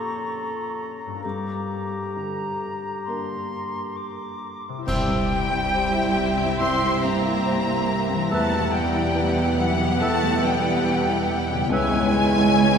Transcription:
0.00 1.19 A#2 soft
0.00 1.19 A#2 medium
0.00 1.27 F3 soft
0.00 1.10 A#3 soft
0.00 1.20 A#3 soft
0.00 1.20 C#4 soft
0.00 1.23 C#4 soft
0.00 1.60 F4 soft
0.00 1.24 A4 medium
0.00 1.20 C#5 soft
0.00 1.20 A#5 medium
0.00 0.97 C#6 medium
1.06 4.82 G2 soft
1.11 4.84 A#3 soft
1.16 4.87 D4 soft
1.20 4.89 A#4 soft
1.20 4.51 A#5 medium
1.25 4.84 G2 soft
1.25 4.39 G4 medium
1.25 2.04 D6 soft
2.15 3.62 D3 soft
2.15 3.07 A#5 soft
3.06 4.84 A#3 soft
3.06 4.84 D4 soft
3.06 4.84 A#4 soft
3.06 3.98 C6 medium
3.97 4.85 D6 medium
4.69 8.27 C3 medium
4.78 8.22 E4 soft
4.83 8.28 C4 medium
4.83 8.33 C5 soft
4.83 6.28 G5 medium
4.87 6.56 C2 medium
4.87 8.28 C2 medium
4.87 6.56 G3 medium
4.87 8.28 E4 medium
4.87 8.28 G4 medium
4.87 5.19 C5 medium
4.87 8.28 E5 medium
4.87 5.20 E5 medium
4.87 6.56 G5 loud
4.87 concert bass drum medium
4.87 crash medium
5.08 5.43 G2 soft
5.31 5.65 G3 soft
5.51 5.86 E4 soft
5.74 6.08 C5 soft
5.95 6.30 E4 soft
6.16 6.51 G3 soft
6.37 6.72 G2 soft
6.58 8.28 C2 medium
6.58 7.02 C4 medium
6.58 7.03 C4 medium
6.58 6.93 C5 medium
6.58 6.92 E5 medium
6.58 7.01 C6 medium
6.58 7.03 C6 medium
6.83 7.17 G3 soft
7.02 7.38 G2 medium
7.02 8.33 A#3 medium
7.02 8.32 A#5 medium
7.02 8.33 A#5 medium
7.25 7.59 E4 soft
7.46 7.81 C5 medium
7.67 8.02 E4 soft
7.88 8.23 G3 soft
8.09 8.31 G2 soft
8.14 11.66 E3 medium
8.23 11.62 E4 soft
8.28 9.97 E2 medium
8.28 8.73 A3 medium
8.28 11.68 G4 medium
8.28 12.18 B4 soft
8.28 8.64 E5 medium
8.28 8.73 A5 medium
8.28 8.74 A5 medium
8.32 11.72 E2 medium
8.32 8.75 A3 medium
8.32 11.72 B3 medium
8.32 11.69 E4 medium
8.32 8.65 B4 medium
8.32 11.72 F#5 medium
8.53 8.87 B2 soft
8.71 9.08 G3 soft
8.71 9.59 G3 medium
8.71 9.61 G5 medium
8.71 9.59 G5 medium
8.95 9.29 E4 medium
9.15 9.50 B4 medium
9.35 9.71 E4 medium
9.58 9.93 E3 soft
9.58 10.02 E3 medium
9.58 10.02 F#3 medium
9.58 10.00 F#5 medium
9.58 10.01 F#5 medium
9.79 10.13 B2 soft
9.99 11.67 E2 medium
9.99 10.44 A3 medium
9.99 10.45 A3 medium
9.99 10.33 B4 medium
9.99 10.34 E5 medium
9.99 10.45 A5 medium
9.99 10.44 A5 loud
10.21 10.56 G3 soft
10.43 10.78 B2 medium
10.43 11.70 G3 medium
10.43 11.56 G3 medium
10.43 11.45 G5 medium
10.43 11.72 G5 medium
10.63 10.99 E4 medium
10.84 11.20 B4 soft
11.06 11.41 E4 medium
11.27 11.62 G3 soft
11.49 11.71 B2 medium
11.54 12.78 C#3 medium
11.58 12.78 B3 soft
11.63 12.78 E4 soft
11.67 12.78 C#2 medium
11.67 12.78 C#5 soft
11.67 12.78 G#5 medium
11.72 12.78 C#2 medium
11.72 12.78 G#3 medium
11.72 12.78 C#4 medium
11.72 12.78 E4 medium
11.72 12.03 B4 medium
11.72 12.78 B4 medium
11.72 12.78 C#5 medium
11.72 12.04 E5 medium
11.72 12.78 G#5 loud
11.91 12.26 G#2 medium
12.13 12.47 B3 medium
12.36 12.69 E4 medium
12.56 12.78 C#5 medium

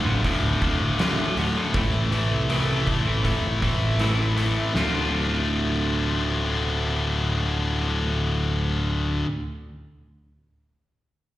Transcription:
0.00 0.22 D2 medium
0.00 0.23 A2 medium
0.00 0.23 D3 medium
0.05 0.22 A1 medium
0.05 0.23 D3 medium
0.05 0.24 A3 medium
0.05 0.25 C4 medium
0.05 0.26 F4 medium
0.24 0.60 D2 medium
0.24 0.61 A2 medium
0.24 0.60 D3 medium
0.24 0.62 A3 medium
0.24 0.63 C4 medium
0.24 0.63 F4 medium
0.24 kick medium
0.24 open hi-hat medium
0.43 0.75 D1 medium
0.61 0.98 D2 medium
0.61 0.98 A2 medium
0.61 0.99 D3 medium
0.61 1.01 A3 medium
0.61 1.01 C4 medium
0.61 1.01 F4 medium
0.61 kick medium
0.61 open hi-hat soft
0.99 1.55 D2 medium
0.99 1.55 A2 medium
0.99 1.19 D3 loud
0.99 1.19 A3 medium
0.99 1.19 C4 loud
0.99 1.17 F4 loud
0.99 snare loud
0.99 open hi-hat medium
1.18 1.36 D3 medium
1.18 1.38 A3 medium
1.18 1.39 C4 medium
1.18 1.39 F4 medium
1.36 1.53 D1 medium
1.36 1.72 D2 medium
1.36 1.72 A2 medium
1.36 1.57 D3 medium
1.36 1.57 A3 medium
1.36 1.57 C4 medium
1.36 1.55 F4 medium
1.36 open hi-hat soft
1.56 1.73 D3 soft
1.56 1.76 A3 medium
1.56 1.76 C4 medium
1.56 1.72 F4 medium
1.74 1.90 A1 loud
1.74 2.48 A2 medium
1.74 2.49 E3 medium
1.74 2.11 A3 medium
1.74 2.12 C4 medium
1.74 2.13 E4 medium
1.74 2.14 A4 medium
1.74 kick loud
1.74 open hi-hat medium
1.94 2.26 A1 medium
2.11 2.48 A2 medium
2.11 2.49 E3 medium
2.11 2.49 A3 medium
2.11 2.50 C4 medium
2.11 2.51 E4 medium
2.11 2.51 A4 medium
2.11 open hi-hat soft
2.32 2.95 C2 medium
2.49 3.05 A2 medium
2.49 3.06 E3 medium
2.49 2.70 A3 medium
2.49 2.69 C4 medium
2.49 2.68 E4 medium
2.49 2.67 A4 medium
2.49 cross-stick loud
2.49 open hi-hat medium
2.68 2.86 A3 medium
2.68 2.87 C4 medium
2.68 2.87 E4 medium
2.68 2.87 A4 medium
2.86 3.22 A2 medium
2.86 3.23 E3 medium
2.86 3.23 A3 medium
2.86 muted clean electric guitar stroke soft
2.86 kick medium
2.86 open hi-hat soft
3.05 3.38 A1 medium
3.05 3.22 A3 medium
3.05 3.23 C4 medium
3.05 3.24 E4 medium
3.05 3.25 A4 medium
3.24 3.60 A2 medium
3.24 3.61 E3 medium
3.24 3.59 A3 medium
3.24 3.60 C4 medium
3.24 3.61 E4 medium
3.24 3.62 A4 medium
3.24 kick medium
3.24 open hi-hat medium
3.44 4.56 A1 medium
3.61 3.99 A2 medium
3.61 3.99 E3 medium
3.61 3.99 A3 medium
3.61 3.99 C4 medium
3.61 4.00 E4 medium
3.61 4.00 A4 medium
3.61 kick medium
3.61 open hi-hat soft
3.98 4.55 A2 medium
3.98 4.56 E3 medium
3.98 4.19 A3 medium
3.98 4.18 C4 loud
3.98 4.17 E4 loud
3.98 4.16 A4 medium
3.98 cross-stick loud
3.98 open hi-hat medium
4.17 4.35 A3 medium
4.17 4.36 C4 medium
4.17 4.37 E4 medium
4.17 4.37 A4 medium
4.36 4.72 A2 medium
4.36 4.72 E3 medium
4.36 4.57 A3 medium
4.36 4.56 C4 medium
4.36 4.55 E4 medium
4.36 4.54 A4 medium
4.36 open hi-hat soft
4.55 4.73 A3 medium
4.55 4.73 C4 medium
4.55 4.72 E4 medium
4.55 4.72 A4 medium
4.73 9.22 D1 medium
4.73 9.25 D2 medium
4.73 9.26 A2 medium
4.73 9.26 D3 medium
4.73 9.26 A3 medium
4.73 9.27 C4 medium
4.73 snare medium
4.77 9.27 F4 loud

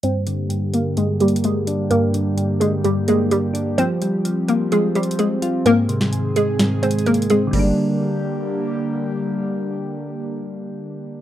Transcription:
0.03 0.48 G2 medium
0.03 3.74 D3 medium
0.03 3.74 G3 medium
0.03 3.74 A#3 medium
0.03 0.70 C4 medium
0.03 5.62 G4 medium
0.03 0.70 C5 loud
0.03 closed hi-hat medium
0.27 1.44 D3 medium
0.27 closed hi-hat medium
0.49 0.96 G2 medium
0.49 closed hi-hat medium
0.73 0.95 A#3 medium
0.73 0.95 A#4 medium
0.73 closed hi-hat medium
0.97 1.89 G2 medium
0.97 1.19 G#3 medium
0.97 1.18 G#4 medium
0.97 closed hi-hat medium
1.20 1.43 G3 medium
1.20 2.38 A#3 medium
1.20 1.42 G4 medium
1.20 closed hi-hat soft
1.28 closed hi-hat medium
1.36 closed hi-hat medium
1.44 1.66 G#3 medium
1.44 1.66 G#4 medium
1.44 closed hi-hat medium
1.67 2.85 D4 medium
1.67 closed hi-hat medium
1.91 2.36 G2 medium
1.91 2.57 A#3 medium
1.91 2.57 A#4 loud
1.91 closed hi-hat medium
2.14 3.31 D3 medium
2.14 closed hi-hat medium
2.37 2.83 G2 medium
2.37 closed hi-hat medium
2.60 2.83 G#3 medium
2.60 2.82 G#4 medium
2.60 closed hi-hat medium
2.84 3.78 G2 medium
2.84 3.06 G3 medium
2.84 3.06 G4 medium
2.84 closed hi-hat medium
3.08 3.30 G#3 medium
3.08 3.78 A#3 medium
3.08 3.30 G#4 medium
3.08 closed hi-hat medium
3.31 3.53 G3 medium
3.31 3.53 G4 medium
3.31 closed hi-hat medium
3.54 3.78 D4 medium
3.54 closed hi-hat medium
3.78 5.64 F3 medium
3.78 4.24 F3 medium
3.78 7.49 C4 medium
3.78 4.45 C4 medium
3.78 4.44 C5 loud
3.78 closed hi-hat medium
4.02 5.19 G3 medium
4.02 closed hi-hat medium
4.25 4.71 F3 medium
4.25 closed hi-hat medium
4.48 4.70 A#3 medium
4.48 4.70 A#4 medium
4.48 closed hi-hat medium
4.72 5.66 F3 medium
4.72 4.94 G#3 medium
4.72 4.94 G#4 medium
4.72 closed hi-hat medium
4.95 5.17 G3 medium
4.95 5.66 C4 medium
4.95 5.17 G4 medium
4.95 closed hi-hat soft
5.03 closed hi-hat medium
5.11 closed hi-hat medium
5.19 5.41 G#3 medium
5.19 5.40 G#4 medium
5.19 closed hi-hat medium
5.42 5.66 F4 medium
5.42 closed hi-hat medium
5.65 6.11 G#2 medium
5.65 7.51 D#3 medium
5.65 6.33 A#3 medium
5.65 7.51 G#4 medium
5.65 6.32 A#4 loud
5.65 closed hi-hat medium
5.89 7.06 C3 medium
5.89 closed hi-hat medium
6.01 snare medium
6.12 6.59 G#2 medium
6.12 closed hi-hat medium
6.36 6.58 G#3 medium
6.36 6.58 G#4 medium
6.36 closed hi-hat medium
6.59 7.54 G#2 medium
6.59 snare loud
6.59 closed hi-hat medium
6.83 7.53 G#3 medium
6.83 7.05 C4 medium
6.83 7.04 C5 medium
6.83 closed hi-hat medium
6.91 closed hi-hat medium
6.99 closed hi-hat medium
7.06 7.28 A#3 medium
7.06 7.28 A#4 medium
7.06 closed hi-hat soft
7.14 closed hi-hat medium
7.22 closed hi-hat medium
7.30 7.52 G#3 medium
7.30 7.53 C4 medium
7.30 7.52 G#4 medium
7.30 closed hi-hat medium
7.47 11.21 D3 medium
7.47 11.21 G3 medium
7.53 11.21 D3 medium
7.53 8.90 G3 medium
7.53 11.21 G3 medium
7.53 11.21 A#3 medium
7.53 11.21 G4 medium
7.53 kick loud
7.53 crash medium
7.59 11.21 D4 medium

